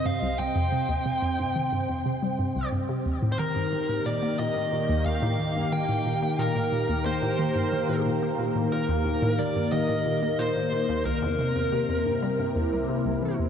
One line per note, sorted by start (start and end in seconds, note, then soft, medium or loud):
0.00 3.06 C3 medium
0.00 4.04 C4 medium
0.00 5.02 C5 medium
0.00 3.06 D#5 medium
0.06 0.20 G2 medium
0.06 0.39 F5 loud
0.22 0.37 C2 loud
0.39 0.49 C2 medium
0.39 2.69 G5 loud
0.56 0.70 F2 loud
0.72 0.82 C3 medium
0.89 0.95 D#2 medium
1.06 1.11 C3 medium
1.22 1.37 F2 medium
1.39 1.49 G2 medium
1.56 1.70 D#3 medium
1.72 1.82 G2 medium
1.89 1.99 F2 medium
2.06 2.15 C3 medium
2.23 2.37 G3 medium
2.39 2.45 G2 medium
2.56 2.61 C2 medium
2.73 2.82 G2 medium
2.89 2.99 C3 loud
3.06 3.15 D#2 medium
3.06 11.06 D#3 medium
3.22 3.37 A2 loud
3.32 12.12 G4 medium
3.32 3.39 C5 medium
3.39 3.49 D#3 medium
3.39 4.08 A#4 medium
3.56 3.62 G2 medium
3.73 3.78 D#3 medium
3.79 13.49 A#3 medium
3.89 4.04 A2 medium
4.06 4.15 A#2 medium
4.06 4.39 D5 medium
4.23 4.28 A#3 medium
4.39 4.49 A#2 medium
4.39 5.05 D#5 medium
4.56 4.65 A2 medium
4.73 4.87 A#2 medium
4.89 5.04 D#2 loud
5.06 5.15 D#2 medium
5.06 5.74 F5 loud
5.22 5.37 A2 loud
5.39 5.49 D#3 medium
5.55 5.61 G2 medium
5.55 12.00 A#4 medium
5.72 5.78 D#3 medium
5.72 6.41 G5 loud
5.89 6.03 A2 medium
6.06 6.15 A#2 medium
6.22 6.28 A#3 medium
6.39 6.49 A#2 medium
6.39 7.05 A#4 medium
6.56 6.65 A2 medium
6.72 6.87 A#2 medium
6.89 7.03 D#2 loud
7.06 7.15 D#2 medium
7.06 8.02 C5 medium
7.22 7.37 A2 loud
7.39 7.49 D#3 medium
7.56 7.61 G2 medium
7.72 7.78 D#3 medium
7.89 8.03 A2 medium
8.06 8.15 A#2 medium
8.22 8.28 A#3 medium
8.39 8.49 A#2 medium
8.56 8.65 A2 medium
8.72 8.87 A#2 medium
8.72 9.41 A#4 loud
8.89 9.03 D#2 loud
9.06 9.15 D#2 medium
9.22 9.37 A2 loud
9.39 9.49 D#3 medium
9.39 9.70 D5 loud
9.56 9.62 G2 medium
9.72 9.78 D#3 medium
9.72 10.41 D#5 loud
9.89 10.03 A2 medium
10.06 10.15 A#2 medium
10.22 10.28 A#3 medium
10.39 10.49 A#2 medium
10.39 11.05 C5 loud
10.56 10.65 A2 medium
10.72 10.87 A#2 medium
10.89 11.03 D#2 loud
11.06 11.15 C2 medium
11.06 13.49 C3 medium
11.06 13.35 A#4 medium
11.22 11.37 E2 loud
11.39 11.49 C3 medium
11.56 11.61 E2 medium
11.72 11.78 C3 medium
11.89 12.03 E2 medium
12.06 12.15 G2 medium
12.22 12.28 G3 medium
12.22 13.49 E4 medium
12.22 13.49 C5 medium
12.39 12.49 G2 medium
12.56 12.65 E2 medium
12.72 12.87 C2 medium
12.89 13.03 C3 medium
13.06 13.15 C2 medium
13.22 13.37 E3 medium
13.39 13.49 E2 medium